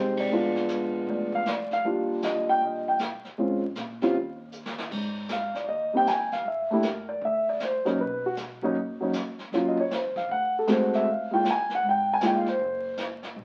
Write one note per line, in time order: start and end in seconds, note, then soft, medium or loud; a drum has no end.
0.00 0.28 C2 medium
0.00 0.30 G#3 medium
0.00 0.31 C4 medium
0.00 0.31 D#4 medium
0.00 0.31 G4 medium
0.00 0.16 C5 medium
0.17 0.67 D5 medium
0.17 kick medium
0.17 ride medium
0.31 1.04 A#1 medium
0.31 1.38 G#3 medium
0.31 1.39 B3 medium
0.31 1.39 D4 medium
0.31 1.39 F4 medium
0.31 brush sweep soft
0.56 snare soft
0.68 snare medium
0.68 hi-hat pedal medium
1.07 1.80 F1 medium
1.07 1.33 D5 medium
1.07 brush sweep soft
1.07 kick soft
1.32 1.47 F5 medium
1.32 kick soft
1.45 1.72 D5 medium
1.45 snare medium
1.45 hi-hat pedal soft
1.71 1.85 F5 loud
1.71 snare soft
1.84 2.44 D#2 medium
1.84 2.92 G3 medium
1.84 2.92 A#3 medium
1.84 2.92 D4 medium
1.84 2.93 F4 medium
1.84 brush sweep soft
1.84 kick soft
2.22 2.48 D#5 medium
2.22 snare medium
2.22 hi-hat pedal soft
2.47 2.61 G5 medium
2.47 muted upright bass stroke soft
2.61 3.21 A#1 medium
2.61 2.87 D#5 medium
2.61 brush sweep soft
2.61 kick soft
2.88 2.96 G5 medium
2.99 snare medium
2.99 hi-hat pedal soft
3.24 muted upright bass stroke soft
3.24 snare soft
3.38 3.74 A#1 medium
3.38 3.61 G#3 medium
3.38 3.61 C4 medium
3.38 3.61 C#4 soft
3.38 3.61 F4 medium
3.38 brush sweep soft
3.38 kick soft
3.75 4.12 A#2 medium
3.75 snare soft
3.75 hi-hat pedal soft
4.01 4.14 G3 medium
4.01 4.14 C4 medium
4.01 4.14 C#4 medium
4.01 4.14 F4 medium
4.01 snare soft
4.14 4.88 D#2 medium
4.14 brush sweep soft
4.14 kick soft
4.52 hi-hat pedal soft
4.66 snare medium
4.78 snare medium
4.91 5.51 G#1 medium
4.91 brush sweep soft
4.91 kick medium
4.91 crash medium
5.29 snare medium
5.29 hi-hat pedal medium
5.33 5.56 F5 medium
5.54 5.67 D#2 medium
5.54 5.62 D5 medium
5.54 snare soft
5.64 6.41 D#2 medium
5.64 5.67 D5 soft
5.68 5.93 D#5 medium
5.68 brush sweep soft
5.68 kick soft
5.93 6.05 G3 medium
5.93 6.06 A#3 medium
5.93 6.06 C4 soft
5.93 6.06 D#4 medium
5.93 6.08 G5 medium
6.07 6.32 G#5 medium
6.07 snare medium
6.07 hi-hat pedal medium
6.32 6.45 F5 medium
6.32 snare soft
6.44 7.18 F#2 medium
6.44 6.71 E5 medium
6.44 brush sweep soft
6.44 kick soft
6.71 6.82 A3 medium
6.71 6.83 A#3 medium
6.71 6.83 D4 medium
6.71 6.84 E4 medium
6.71 6.84 G4 medium
6.82 7.09 A#4 medium
6.82 snare medium
6.82 hi-hat pedal soft
7.09 7.22 D5 medium
7.21 7.81 D2 medium
7.21 7.48 E5 medium
7.21 brush sweep soft
7.21 kick soft
7.49 7.61 D5 medium
7.60 7.86 C5 medium
7.60 snare medium
7.60 hi-hat pedal medium
7.85 7.97 F#3 medium
7.85 7.98 A#3 medium
7.85 7.98 C#4 medium
7.85 7.98 D#4 medium
7.85 7.99 A#4 medium
7.85 muted upright bass stroke soft
7.85 snare soft
7.98 8.71 B1 medium
7.98 8.24 B4 medium
7.98 brush sweep soft
7.98 kick soft
8.26 8.33 F#4 medium
8.36 snare medium
8.36 hi-hat pedal medium
8.62 8.74 F#3 medium
8.62 8.75 A#3 medium
8.62 8.75 C#4 medium
8.62 8.75 D#4 medium
8.62 kick soft
8.75 9.48 F#1 medium
8.75 brush sweep soft
8.75 kick soft
9.00 9.12 F#3 medium
9.00 9.13 A#3 medium
9.00 9.13 C#4 medium
9.00 9.14 D#4 medium
9.13 snare medium
9.13 hi-hat pedal medium
9.39 snare soft
9.52 10.12 D#2 medium
9.52 9.76 F#3 medium
9.52 9.76 A#3 medium
9.52 9.76 C#4 medium
9.52 9.76 F4 medium
9.52 brush sweep soft
9.52 kick soft
9.52 snare soft
9.68 9.79 D#5 medium
9.78 9.91 C#5 medium
9.78 kick medium
9.91 10.15 C5 medium
9.91 snare medium
9.91 hi-hat pedal soft
10.16 10.29 F5 medium
10.16 muted upright bass stroke soft
10.16 kick medium
10.16 snare soft
10.29 11.02 D2 medium
10.29 10.55 F#5 medium
10.29 brush sweep soft
10.29 kick soft
10.59 10.69 A4 medium
10.67 11.06 G#3 medium
10.67 11.06 A3 medium
10.67 11.06 C4 medium
10.67 11.07 F#4 medium
10.67 snare medium
10.67 hi-hat pedal medium
10.71 10.94 C5 medium
10.93 11.07 E5 medium
10.93 snare soft
11.06 11.79 C#2 medium
11.06 brush sweep soft
11.06 kick soft
11.11 11.33 F5 medium
11.31 11.43 G#3 medium
11.31 11.44 A#3 soft
11.31 11.44 D#4 medium
11.31 11.44 F4 medium
11.31 11.45 G5 medium
11.44 snare medium
11.44 hi-hat pedal medium
11.51 11.72 G#5 medium
11.69 snare soft
11.75 11.85 F#5 medium
11.82 12.18 G#1 medium
11.82 brush sweep medium
11.82 kick soft
11.89 12.10 G5 medium
12.13 12.24 G#5 medium
12.21 12.57 C#2 medium
12.21 12.44 G#3 medium
12.21 12.44 A#3 medium
12.21 12.45 D#4 medium
12.21 12.45 F4 medium
12.21 snare medium
12.21 hi-hat pedal medium
12.25 12.36 G5 medium
12.38 12.48 F5 medium
12.46 13.03 C5 medium
12.46 snare soft
12.59 13.32 F#1 medium
12.59 brush sweep soft
12.59 kick soft
12.97 snare medium
12.97 hi-hat pedal medium
13.23 snare soft
13.36 13.45 A#1 medium
13.36 brush sweep soft
13.36 kick soft